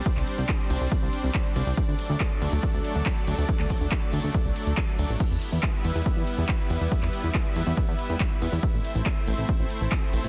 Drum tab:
CC |----------------|----------------|----------------|x---------------|
RD |--x---x---x---x-|--x---x---x---x-|--x---x---x---x-|--x---x---x---x-|
HH |xxo-xxoxxxoxxxox|xxoxxxoxxxoxxxox|xxoxxxo-xxoxxxo-|xxoxxxoxxxoxxxox|
SH |xx-xxx-xxx-xxx-x|xx-xxx-xxx-xxx-x|xx-xxx-xxx-xxx-x|xx-xxx-xxx-xxx-x|
CP |-x--x-------x---|----x-------x---|-x--x-------x---|----x-------x---|
BD |o---o---o---o---|o---o---o---o---|o-o-o---o---o---|o---o---o---o---|

CC |----------------|----------------|
RD |--x---x---x---x-|--x---x---x---x-|
HH |xxo-xxoxxxoxxxox|xxoxxxoxxxo-xxox|
SH |xx-xxx-xxx-xxx-x|xx-xxx-xxx-xxx-x|
CP |-x--x-------x---|----x-------x---|
BD |o---o---o---o---|o---o---o---o---|